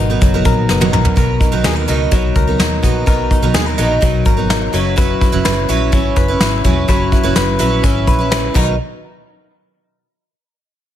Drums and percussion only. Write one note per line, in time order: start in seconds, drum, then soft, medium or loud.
0.21 kick loud
0.21 closed hi-hat loud
0.45 kick loud
0.45 snare soft
0.45 closed hi-hat medium
0.69 snare medium
0.81 high tom medium
0.93 mid tom loud
1.05 floor tom loud
1.17 kick medium
1.17 closed hi-hat medium
1.41 kick medium
1.41 closed hi-hat medium
1.64 snare loud
1.64 closed hi-hat medium
1.88 closed hi-hat medium
2.11 kick medium
2.11 closed hi-hat medium
2.35 kick medium
2.35 closed hi-hat medium
2.60 snare loud
2.60 closed hi-hat medium
2.83 kick medium
2.83 closed hi-hat medium
3.07 kick medium
3.07 closed hi-hat medium
3.31 kick medium
3.31 closed hi-hat medium
3.54 snare loud
3.54 closed hi-hat medium
3.79 closed hi-hat medium
4.02 kick medium
4.02 closed hi-hat medium
4.25 kick medium
4.25 closed hi-hat medium
4.50 snare loud
4.50 closed hi-hat medium
4.74 closed hi-hat medium
4.97 kick loud
4.97 closed hi-hat medium
5.21 kick medium
5.21 closed hi-hat medium
5.45 snare loud
5.45 closed hi-hat medium
5.69 closed hi-hat medium
5.92 kick medium
5.92 closed hi-hat loud
6.16 kick medium
6.16 snare soft
6.16 closed hi-hat medium
6.41 snare loud
6.41 closed hi-hat medium
6.64 kick medium
6.64 closed hi-hat medium
6.88 kick loud
6.88 closed hi-hat medium
7.12 kick loud
7.12 closed hi-hat medium
7.35 snare loud
7.35 closed hi-hat medium
7.60 closed hi-hat medium
7.83 kick loud
7.83 closed hi-hat loud
8.07 kick medium
8.07 closed hi-hat medium
8.32 snare loud
8.32 closed hi-hat medium
8.55 kick loud
8.55 crash medium